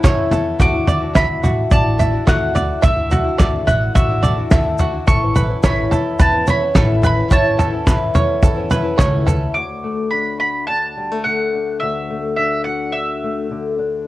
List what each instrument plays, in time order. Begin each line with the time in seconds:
Already playing: five-string banjo A4 B4
0.03 upright bass F#2, steel-string acoustic guitar A2 A3 B3 C#4 E4, five-string banjo C#5, kick, snare, floor tom, shaker
0.30 upright bass E2, steel-string acoustic guitar A3 B3 C#4 E4, five-string banjo A4, floor tom, shaker
0.59 upright bass D2, steel-string acoustic guitar D3 A3 D4 E4 F#4, five-string banjo F#4, mandolin D6, kick, floor tom, shaker
0.73 steel-string acoustic guitar D4 E4 F#4
0.86 steel-string acoustic guitar A3 D4 E4 F#4, five-string banjo D5, floor tom, shaker
1.00 steel-string acoustic guitar D4 E4 F#4
1.13 upright bass D2, steel-string acoustic guitar D3 A3 D4 E4 F#4, five-string banjo E5, mandolin B5, kick, snare, floor tom, shaker
1.41 upright bass A1, steel-string acoustic guitar A3 D4 E4 F#4, five-string banjo F#4, floor tom, shaker
1.71 upright bass A1, five-string banjo D5, mandolin A5, kick, floor tom, shaker
1.83 steel-string acoustic guitar D4 E4 F#4
1.96 steel-string acoustic guitar A3 D4 E4 F#4, five-string banjo E5, floor tom, shaker
2.11 steel-string acoustic guitar D4 E4 F#4
2.25 upright bass D2, steel-string acoustic guitar D3 A3 D4 E4 F#4, five-string banjo F#4, mandolin F#5, kick, snare, floor tom, shaker
2.52 steel-string acoustic guitar A3 D4 E4 F#4, five-string banjo D5, floor tom, shaker
2.81 upright bass D2, steel-string acoustic guitar D3 A3 D4 E4 F#4, five-string banjo E5, mandolin E5, kick, floor tom, shaker
2.95 steel-string acoustic guitar D4 E4 F#4
3.09 steel-string acoustic guitar A3 D4 E4 F#4, five-string banjo F#4, floor tom, shaker
3.24 steel-string acoustic guitar D4 E4 F#4
3.37 upright bass D2, steel-string acoustic guitar D3 A3 D4 E4 F#4, five-string banjo D5, kick, snare, floor tom, shaker
3.66 upright bass A1, steel-string acoustic guitar A3 D4 E4 F#4, five-string banjo E5, mandolin F#5, floor tom, shaker
3.95 upright bass A1, five-string banjo F#4, mandolin E5, kick, floor tom, shaker
4.09 steel-string acoustic guitar D4 E4 F#4
4.21 steel-string acoustic guitar A3 D4 E4 F#4, five-string banjo D5, floor tom, shaker
4.36 steel-string acoustic guitar D4 E4 F#4
4.51 upright bass D2, steel-string acoustic guitar D3 A3 D4 E4 F#4, five-string banjo E5, kick, snare, floor tom, shaker
4.78 steel-string acoustic guitar A3 D4 E4 F#4, five-string banjo F#4, floor tom, shaker
4.91 steel-string acoustic guitar D4 E4 F#4
5.06 upright bass A1, steel-string acoustic guitar A2 A3 B3 C#4 E4, five-string banjo A4, mandolin C#6, kick, floor tom, shaker
5.21 steel-string acoustic guitar B3 C#4 E4
5.33 steel-string acoustic guitar A3 B3 C#4 E4, five-string banjo B4, floor tom, shaker
5.47 steel-string acoustic guitar B3 C#4 E4
5.62 upright bass A1, steel-string acoustic guitar A2 A3 B3 C#4 E4, five-string banjo C#5, mandolin B5, kick, snare, floor tom, shaker
5.90 upright bass E2, steel-string acoustic guitar A3 B3 C#4 E4, five-string banjo A4, floor tom, shaker
6.19 upright bass E2, five-string banjo B4, mandolin A5, kick, floor tom, shaker
6.32 steel-string acoustic guitar B3 C#4 E4
6.45 steel-string acoustic guitar A3 B3 C#4 E4, five-string banjo C#5, floor tom, shaker
6.50 mandolin B5
6.60 steel-string acoustic guitar B3 C#4 E4
6.74 upright bass A1, steel-string acoustic guitar A2 A3 B3 C#4 E4, five-string banjo A4, kick, snare, floor tom, shaker
7.01 steel-string acoustic guitar A3 B3 C#4 E4, five-string banjo B4, floor tom, shaker
7.06 mandolin B5
7.15 steel-string acoustic guitar B3 C#4 E4
7.28 upright bass A1, steel-string acoustic guitar A2 A3 B3 C#4 E4, five-string banjo C#5, kick, floor tom, shaker
7.33 mandolin A5
7.42 steel-string acoustic guitar B3 C#4 E4
7.57 steel-string acoustic guitar A3 B3 C#4 E4, five-string banjo A4, floor tom, shaker
7.71 steel-string acoustic guitar B3 C#4 E4
7.85 upright bass A1, steel-string acoustic guitar A2 A3 B3 C#4 E4, five-string banjo B4, kick, snare, floor tom, shaker
8.14 upright bass E2, steel-string acoustic guitar A3 B3 C#4 E4, five-string banjo C#5, floor tom, shaker
8.43 upright bass E2, five-string banjo A4, kick, floor tom, shaker
8.55 steel-string acoustic guitar B3 C#4 E4
8.70 steel-string acoustic guitar A3 B3 C#4 E4, five-string banjo B4, floor tom, shaker
8.82 steel-string acoustic guitar B3 C#4 E4
8.97 upright bass C#2, steel-string acoustic guitar A2 A3 B3 C#4 E4, five-string banjo C#5, kick, snare, floor tom, shaker
9.25 steel-string acoustic guitar A3 B3 C#4 E4, five-string banjo A4, floor tom, shaker
9.54 steel-string acoustic guitar D2 F#4, mandolin D6
9.84 steel-string acoustic guitar A3
10.11 steel-string acoustic guitar D4, mandolin B5
10.40 steel-string acoustic guitar F#4, mandolin B5
10.67 steel-string acoustic guitar D4, mandolin A5
10.97 steel-string acoustic guitar G3
11.11 steel-string acoustic guitar A3
11.24 steel-string acoustic guitar D3, mandolin F#5
11.55 steel-string acoustic guitar D4
11.80 steel-string acoustic guitar D2 F#4, mandolin E5
12.10 steel-string acoustic guitar A3
12.36 steel-string acoustic guitar D4, mandolin E5
12.64 steel-string acoustic guitar F#4, mandolin F#5
12.92 steel-string acoustic guitar D4, mandolin E5
13.24 steel-string acoustic guitar A3
13.51 steel-string acoustic guitar D3
13.79 steel-string acoustic guitar D4